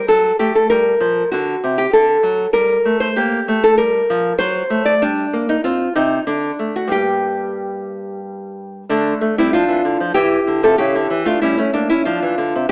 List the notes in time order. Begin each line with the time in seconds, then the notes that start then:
0.08 F#3 A4
0.39 A3 G4
0.55 A4
0.70 G3 A#4
1.00 F3
1.31 D3 F#4
1.64 C3
1.78 G4
1.93 D3 A4
2.23 F#3
2.53 G3 A#4
2.85 A3
3.00 C5
3.16 A#3 G4
3.48 A3
3.64 A4
3.78 G3 A#4
4.10 F3
4.38 F#3 C5
4.70 A3
4.85 D5
5.02 G3 D4
5.33 A#3
5.49 D#4
5.64 C4 F4
5.95 C3 D#4
6.27 D3 D4
6.59 A3
6.76 F#4
6.87 G2 G3 A#3
6.92 G4
8.89 D3 A3 D4
9.21 A3
9.38 G3 C4 E4
9.53 F3 D4 F4
9.68 E3
9.85 D3
10.00 F3
10.14 E3 E4 G4
10.47 D3
10.63 C3 F4 A4
10.78 C#3 E4 G4
10.95 D3
11.10 E3
11.25 A3 D4 F4
11.42 G3 C#4 E4
11.57 A3 C#4
11.73 A#3 D4
11.90 C#4 E4
12.05 F3 D4 F4
12.22 E3
12.38 D3
12.55 C3